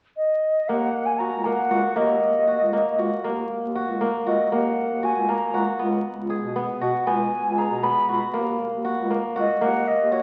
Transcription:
0.17 0.70 D#5 medium
0.68 0.90 D#2 medium
0.68 1.45 A#3 medium
0.68 1.07 F#5 medium
1.06 1.28 D#2 medium
1.06 1.20 G#5 medium
1.19 1.70 F#4 medium
1.19 1.46 A#5 medium
1.32 1.53 C#2 medium
1.44 1.95 A#3 medium
1.44 1.98 F#5 medium
1.70 1.81 C#2 medium
1.70 2.47 F#4 medium
1.96 2.17 D#2 medium
1.96 2.72 A#3 medium
1.96 2.99 D#5 medium
2.34 2.55 D#2 medium
2.47 2.98 F#4 medium
2.59 2.80 C#2 medium
2.73 3.24 A#3 medium
2.98 3.09 C#2 medium
2.98 3.75 F#4 medium
3.24 3.45 D#2 medium
3.24 4.01 A#3 medium
3.62 3.83 D#2 medium
3.75 4.26 F#4 medium
3.87 4.09 C#2 medium
4.01 4.52 A#3 medium
4.25 4.36 C#2 medium
4.25 5.02 F#4 medium
4.25 4.50 D#5 medium
4.51 4.72 D#2 medium
4.51 5.28 A#3 medium
4.51 5.06 F#5 medium
4.89 5.11 D#2 medium
5.03 5.54 F#4 medium
5.03 5.31 G#5 medium
5.15 5.36 C#2 medium
5.28 5.85 A#3 medium
5.28 5.67 A#5 medium
5.53 5.64 C#2 medium
5.53 6.81 F#4 medium
5.79 6.00 C#2 medium
5.79 6.55 B3 medium
6.17 6.38 C#2 medium
6.30 7.57 G#4 medium
6.42 6.64 B2 medium
6.56 7.06 B3 medium
6.81 6.92 B2 medium
6.81 8.08 F#4 medium
6.81 7.08 F#5 medium
7.07 7.28 C#2 medium
7.07 7.83 B3 medium
7.07 7.60 G#5 medium
7.45 7.66 C#2 medium
7.58 8.94 G#4 medium
7.58 7.85 A#5 medium
7.71 7.92 B2 medium
7.83 8.40 B3 medium
7.83 8.22 B5 medium
8.09 8.20 C#2 medium
8.09 8.84 F#4 medium
8.34 8.56 D#2 medium
8.34 9.10 A#3 medium
8.72 8.93 D#2 medium
8.85 9.35 F#4 medium
8.98 9.19 C#2 medium
9.10 9.61 A#3 medium
9.36 9.47 C#2 medium
9.36 10.11 F#4 medium
9.36 9.64 D#5 medium
9.61 9.83 D#2 medium
9.61 10.22 A#3 medium
9.61 9.89 F#5 medium
9.88 10.14 D#5 medium
10.00 10.21 D#2 medium
10.12 10.22 F#4 medium
10.12 10.22 C#5 medium

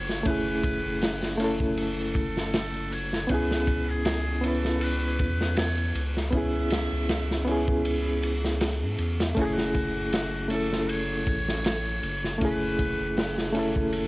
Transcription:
0.00 0.81 F#1 medium
0.00 0.20 A3 medium
0.00 0.22 C#4 medium
0.00 0.23 E4 medium
0.00 0.24 A4 medium
0.00 0.28 C#5 loud
0.08 snare soft
0.08 shaker soft
0.23 1.34 A3 medium
0.23 1.35 C#4 medium
0.23 1.52 B4 loud
0.23 kick loud
0.23 ride medium
0.23 shaker medium
0.28 1.37 E4 medium
0.28 1.38 G#4 medium
0.46 triangle medium
0.46 shaker soft
0.63 kick loud
0.63 ride medium
0.63 shaker medium
0.84 3.26 F#1 medium
0.84 shaker soft
1.02 snare loud
1.02 open hi-hat medium
1.02 shaker medium
1.23 snare medium
1.23 shaker soft
1.37 3.24 A3 medium
1.37 3.25 C#4 medium
1.37 ride medium
1.37 shaker medium
1.42 3.26 E4 medium
1.42 3.28 A4 loud
1.60 kick medium
1.60 shaker soft
1.77 2.94 A4 loud
1.77 ride medium
1.77 shaker medium
1.99 shaker soft
2.15 kick medium
2.15 ride medium
2.15 shaker medium
2.36 snare soft
2.36 shaker soft
2.53 snare loud
2.53 ride medium
2.53 shaker soft
2.74 ride soft
2.74 shaker soft
2.91 3.32 C#5 loud
2.91 ride medium
2.91 shaker medium
3.12 snare soft
3.12 shaker soft
3.27 5.21 C#2 medium
3.27 4.38 B3 medium
3.27 4.39 C#4 medium
3.27 3.91 B4 loud
3.27 kick loud
3.27 ride medium
3.27 shaker medium
3.32 4.40 E4 medium
3.32 4.42 G#4 loud
3.51 snare medium
3.51 shaker soft
3.67 kick loud
3.67 ride medium
3.67 shaker loud
3.89 4.46 G#4 loud
3.89 shaker soft
4.05 snare loud
4.05 ride medium
4.05 shaker medium
4.26 shaker soft
4.41 6.28 B3 medium
4.41 6.29 C#4 medium
4.41 4.84 A4 loud
4.41 ride medium
4.41 shaker loud
4.46 6.30 E4 medium
4.46 6.31 B4 medium
4.64 snare soft
4.64 shaker soft
4.81 5.58 B4 loud
4.81 ride medium
4.81 shaker soft
5.02 shaker soft
5.19 5.92 E2 loud
5.19 kick loud
5.19 ride medium
5.19 shaker loud
5.40 snare medium
5.40 triangle medium
5.40 shaker soft
5.57 6.04 C#5 loud
5.57 snare loud
5.57 ride medium
5.57 shaker medium
5.78 ride soft
5.78 shaker soft
5.95 6.88 C#2 medium
5.95 ride medium
5.95 triangle medium
5.95 shaker loud
6.16 snare soft
6.16 shaker soft
6.31 7.42 B3 medium
6.31 7.43 C#4 medium
6.31 7.82 E5 loud
6.31 kick loud
6.31 ride medium
6.31 shaker medium
6.35 7.44 E4 medium
6.35 7.45 G#4 medium
6.53 triangle medium
6.53 shaker soft
6.70 snare loud
6.70 ride medium
6.70 shaker medium
6.91 8.83 C#2 medium
6.91 shaker soft
7.08 snare loud
7.08 ride medium
7.08 shaker medium
7.29 snare medium
7.29 shaker soft
7.45 9.32 B3 medium
7.45 9.33 C#4 medium
7.45 ride medium
7.45 shaker loud
7.50 9.34 E4 medium
7.50 9.35 G#4 loud
7.67 kick loud
7.67 shaker soft
7.85 ride medium
7.85 shaker soft
8.06 shaker soft
8.23 ride medium
8.23 shaker medium
8.44 snare soft
8.44 shaker soft
8.61 snare loud
8.61 ride medium
8.61 shaker soft
8.81 8.97 G#2 loud
8.81 shaker soft
8.98 9.33 E2 medium
8.98 ride medium
8.98 shaker medium
9.20 snare loud
9.20 ride medium
9.20 shaker soft
9.35 11.28 F#1 loud
9.35 10.46 A3 medium
9.35 10.47 C#4 medium
9.35 9.46 F#4 loud
9.35 kick loud
9.35 ride medium
9.35 shaker soft
9.39 10.48 E4 medium
9.39 10.49 G#4 loud
9.45 9.54 G#4 medium
9.53 10.50 F#4 loud
9.58 snare soft
9.58 shaker soft
9.74 kick medium
9.74 ride medium
9.74 shaker loud
9.95 shaker soft
10.12 snare loud
10.12 ride medium
10.12 shaker medium
10.34 shaker soft
10.49 12.36 A3 medium
10.49 12.37 C#4 medium
10.49 10.90 A4 loud
10.49 ride medium
10.49 shaker medium
10.53 12.38 E4 medium
10.53 12.39 A4 medium
10.71 snare soft
10.71 shaker soft
10.88 12.41 C#5 loud
10.88 ride medium
10.88 shaker soft
11.09 shaker soft
11.27 12.00 A1 loud
11.27 kick loud
11.27 ride medium
11.27 shaker medium
11.47 snare soft
11.47 triangle medium
11.47 shaker soft
11.64 snare loud
11.64 ride medium
11.64 shaker soft
11.85 ride soft
11.85 shaker soft
12.02 12.96 F#1 medium
12.02 ride medium
12.02 triangle medium
12.02 shaker medium
12.23 snare soft
12.23 shaker soft
12.38 13.49 A3 medium
12.38 13.50 C#4 medium
12.38 13.63 B4 loud
12.38 kick loud
12.38 ride medium
12.38 shaker soft
12.42 13.52 E4 medium
12.42 13.53 G#4 medium
12.62 triangle medium
12.62 shaker soft
12.78 kick medium
12.78 ride medium
12.78 shaker medium
12.99 14.07 F#1 medium
12.99 shaker soft
13.16 snare loud
13.16 open hi-hat medium
13.16 shaker medium
13.38 snare medium
13.38 shaker soft
13.52 14.07 A3 medium
13.52 14.07 C#4 medium
13.52 ride medium
13.52 shaker loud
13.57 14.07 E4 medium
13.57 14.07 A4 loud
13.76 kick medium
13.76 shaker soft
13.92 14.07 A4 loud
13.92 ride medium
13.92 shaker soft

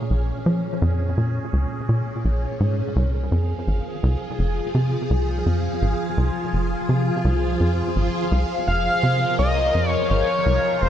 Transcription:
0.00 2.96 A#2 medium
0.00 3.94 A#3 medium
0.00 2.96 C#4 medium
0.00 10.89 G#4 medium
0.10 0.32 A#1 medium
0.46 0.68 F3 medium
0.82 1.15 F2 loud
1.18 1.40 A#2 medium
1.53 1.66 C#2 medium
1.89 2.02 A#2 medium
2.25 2.47 A#1 medium
2.60 2.82 G#2 medium
2.96 3.29 C2 loud
2.96 10.89 F3 medium
3.32 3.54 F2 medium
3.37 10.89 F4 medium
3.67 3.81 G#1 medium
3.67 9.28 G#4 medium
4.03 4.17 C2 loud
4.39 4.61 F1 medium
4.75 4.97 C3 medium
5.10 5.43 C2 medium
5.46 5.68 F2 medium
5.82 5.95 G#1 medium
6.17 6.31 C2 loud
6.53 6.75 F1 medium
6.89 7.11 C3 medium
7.25 7.58 C2 loud
7.60 7.82 F2 medium
7.96 8.09 G#1 medium
8.32 8.45 C2 loud
8.67 8.90 F1 medium
8.67 9.35 F5 loud
9.03 9.25 C3 medium
9.03 10.89 A#4 medium
9.39 9.72 C2 loud
9.39 9.89 D#5 loud
9.75 9.97 F2 medium
9.89 10.10 C#5 loud
10.10 10.24 G#1 medium
10.10 10.83 C#5 loud
10.46 10.59 C2 loud
10.82 10.89 F1 medium
10.82 10.89 C5 loud

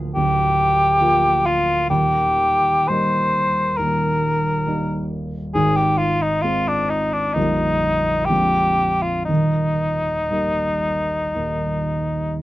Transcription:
0.00 0.11 D1 medium
0.00 0.11 D2 medium
0.00 0.12 F3 soft
0.00 0.12 A#3 soft
0.00 0.12 F4 soft
0.15 1.86 D1 medium
0.15 1.86 D2 medium
0.15 1.48 G4 loud
1.01 1.85 F3 soft
1.01 1.85 A#3 soft
1.01 1.86 F4 medium
1.46 1.89 F4 medium
1.90 3.75 D#1 medium
1.90 3.76 D#2 medium
1.90 2.90 G4 loud
2.88 3.75 G3 soft
2.88 3.75 A#3 soft
2.88 3.76 D#4 medium
2.88 3.79 C5 loud
3.77 5.51 D#1 medium
3.77 5.51 D#2 medium
3.77 5.09 A#4 medium
4.67 5.51 G3 soft
4.67 5.51 A#3 soft
4.67 5.51 D#4 soft
5.54 7.32 G#1 medium
5.54 7.32 G#2 medium
5.54 5.77 G#4 loud
5.76 5.99 G4 medium
5.98 6.23 F4 medium
6.21 6.43 D#4 medium
6.41 7.32 G#3 soft
6.41 7.32 C4 soft
6.41 6.69 F4 medium
6.41 7.32 F4 soft
6.68 6.91 D4 medium
6.89 7.14 D#4 medium
7.13 7.35 D4 medium
7.33 8.27 A#0 medium
7.33 8.27 A#1 medium
7.33 8.26 G3 soft
7.33 8.26 A#3 soft
7.33 8.27 D#4 medium
7.33 8.27 D#4 soft
8.25 9.04 G4 medium
8.30 9.26 A#0 soft
8.30 9.26 A#1 medium
8.30 9.25 G#3 soft
8.30 9.25 C4 soft
8.30 9.25 D4 soft
9.02 9.25 F4 medium
9.25 11.31 D#1 soft
9.25 11.31 D#2 soft
9.25 12.35 D#4 medium
10.31 11.31 G3 soft
10.31 11.31 A#3 soft
10.31 11.32 D#4 soft
11.35 12.42 D#1 soft
11.35 12.42 D#2 soft

